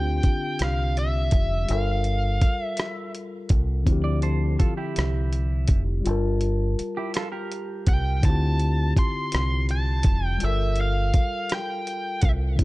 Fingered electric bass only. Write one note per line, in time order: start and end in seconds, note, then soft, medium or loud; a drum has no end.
0.00 0.20 D2 medium
0.61 1.29 C2 medium
1.33 1.65 F1 medium
1.70 2.38 G1 medium
3.51 3.83 C2 medium
3.87 4.56 D2 medium
4.61 muted fingered electric bass stroke soft
4.98 5.66 C2 medium
5.70 6.02 F1 medium
6.06 6.74 G1 medium
6.80 muted fingered electric bass stroke soft
7.88 8.20 C2 medium
8.24 8.92 D2 medium
9.34 10.02 C2 medium
10.06 10.38 F1 medium
10.43 11.11 G1 medium
12.23 12.56 C2 medium
12.60 12.64 D2 medium